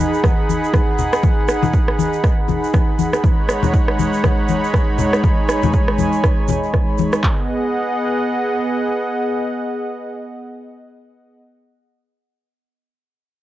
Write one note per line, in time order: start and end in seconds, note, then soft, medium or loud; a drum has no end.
0.00 3.20 D#4 medium
0.00 3.20 G#4 medium
0.00 3.20 F#5 medium
0.00 3.20 B5 medium
0.14 shaker soft
0.24 kick loud
0.24 cross-stick medium
0.24 high conga medium
0.24 shaker soft
0.49 high conga medium
0.49 shaker medium
0.64 shaker medium
0.74 kick loud
0.74 cross-stick medium
0.74 high conga medium
0.74 shaker soft
0.98 low conga medium
0.98 shaker medium
1.13 cross-stick medium
1.13 shaker medium
1.23 kick loud
1.23 high conga medium
1.23 shaker soft
1.48 cross-stick medium
1.48 shaker medium
1.63 high conga medium
1.63 low conga loud
1.63 shaker soft
1.73 kick loud
1.73 shaker soft
1.88 cross-stick medium
1.99 high conga medium
1.99 shaker medium
2.13 shaker soft
2.24 kick loud
2.24 cross-stick medium
2.24 shaker soft
2.48 high conga medium
2.48 low conga medium
2.48 shaker medium
2.64 shaker soft
2.73 kick loud
2.73 cross-stick medium
2.73 high conga medium
2.73 shaker soft
2.99 high conga loud
2.99 shaker medium
3.13 cross-stick medium
3.13 shaker medium
3.24 7.20 G#3 medium
3.24 7.20 D#4 medium
3.24 7.20 C#5 medium
3.24 5.22 F#5 medium
3.24 7.20 B5 medium
3.24 kick loud
3.24 high conga medium
3.24 shaker soft
3.49 cross-stick medium
3.49 shaker medium
3.63 high conga medium
3.63 low conga loud
3.63 shaker medium
3.74 kick medium
3.74 shaker soft
3.88 cross-stick medium
3.99 high conga medium
3.99 low conga medium
3.99 shaker medium
4.13 shaker soft
4.24 kick loud
4.24 cross-stick medium
4.24 high conga medium
4.24 shaker soft
4.48 high conga medium
4.48 shaker medium
4.64 shaker soft
4.73 kick medium
4.73 cross-stick medium
4.73 high conga medium
4.73 shaker soft
4.98 low conga loud
4.98 shaker medium
5.13 cross-stick medium
5.13 shaker soft
5.23 7.22 G#5 medium
5.23 kick loud
5.23 high conga medium
5.23 shaker soft
5.49 cross-stick medium
5.49 shaker medium
5.63 high conga medium
5.63 low conga loud
5.63 shaker soft
5.73 kick medium
5.73 shaker soft
5.88 cross-stick medium
5.98 high conga medium
5.98 low conga medium
5.98 shaker medium
6.13 shaker soft
6.24 kick loud
6.24 cross-stick medium
6.24 shaker soft
6.48 high conga medium
6.48 low conga loud
6.48 shaker medium
6.63 shaker soft
6.73 kick medium
6.73 cross-stick medium
6.73 high conga medium
6.73 shaker soft
6.98 high conga medium
6.98 shaker medium
7.13 cross-stick medium
7.13 shaker medium
7.23 11.41 B3 medium
7.23 11.41 G#4 medium
7.23 11.41 D#5 medium
7.23 11.41 F#5 medium
7.23 kick loud
7.23 clap medium